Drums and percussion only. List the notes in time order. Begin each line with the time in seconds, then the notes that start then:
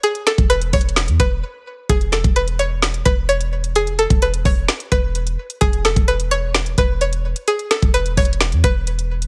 0.03 closed hi-hat
0.15 closed hi-hat
0.27 snare, closed hi-hat
0.38 kick, closed hi-hat
0.50 closed hi-hat
0.62 closed hi-hat
0.73 kick, closed hi-hat, open hi-hat
0.81 closed hi-hat
0.89 closed hi-hat
0.96 snare, closed hi-hat
1.08 closed hi-hat
1.20 kick, closed hi-hat
1.89 kick, closed hi-hat
2.01 closed hi-hat
2.13 snare, closed hi-hat
2.24 kick, closed hi-hat
2.36 closed hi-hat
2.48 closed hi-hat
2.59 closed hi-hat
2.82 snare, closed hi-hat
2.94 closed hi-hat
3.06 kick, closed hi-hat
3.29 closed hi-hat
3.41 closed hi-hat
3.64 closed hi-hat
3.75 closed hi-hat
3.87 closed hi-hat
3.99 closed hi-hat
4.10 kick, closed hi-hat
4.22 closed hi-hat
4.34 closed hi-hat
4.45 kick, open hi-hat
4.68 snare, closed hi-hat
4.80 closed hi-hat
4.92 kick, closed hi-hat
5.15 closed hi-hat
5.27 closed hi-hat
5.50 closed hi-hat
5.62 kick, closed hi-hat
5.73 closed hi-hat
5.85 snare, closed hi-hat
5.96 kick, closed hi-hat
6.08 closed hi-hat
6.20 closed hi-hat
6.31 closed hi-hat
6.55 snare, closed hi-hat
6.66 closed hi-hat
6.78 kick, closed hi-hat
7.01 closed hi-hat
7.13 closed hi-hat
7.36 closed hi-hat
7.48 closed hi-hat
7.59 closed hi-hat
7.71 snare, closed hi-hat
7.82 kick, closed hi-hat
7.94 closed hi-hat
8.06 closed hi-hat
8.17 kick, closed hi-hat, open hi-hat
8.25 closed hi-hat
8.33 closed hi-hat
8.41 snare, closed hi-hat
8.52 closed hi-hat
8.64 kick, closed hi-hat
8.87 closed hi-hat
8.99 closed hi-hat
9.22 closed hi-hat